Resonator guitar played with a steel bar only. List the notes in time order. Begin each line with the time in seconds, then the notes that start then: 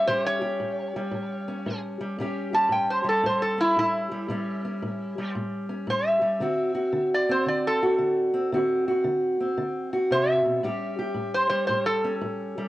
0.07 C5
0.27 C#5
2.54 A5
2.72 G5
2.90 C5
3.09 A4
3.26 C5
3.42 A4
3.60 E4
3.79 E4
5.90 C5
6.07 E5
7.14 D5
7.31 C5
7.48 D5
7.67 A4
10.12 C5
10.30 E5
11.34 C5
11.50 C5
11.67 C5
11.86 A4